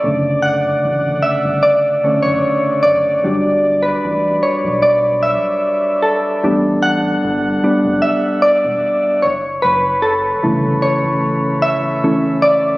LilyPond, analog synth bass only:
\new Staff \with { instrumentName = "Analog synth bass" } { \clef bass \time 4/4 \key d \major \tempo 4 = 75 fis,,4 a,,8 r16 g,,16 r8 fis,,16 fis,,16 r8 fis,,8 | g,,4 a,,8 r16 b,,4 r4 r16 | a,,4 g,,8 r16 fis,,16 r8 e,,16 e,,16 r8 fis,,8 | fis,,4 g,,8 r16 a,,4 r4 r16 | }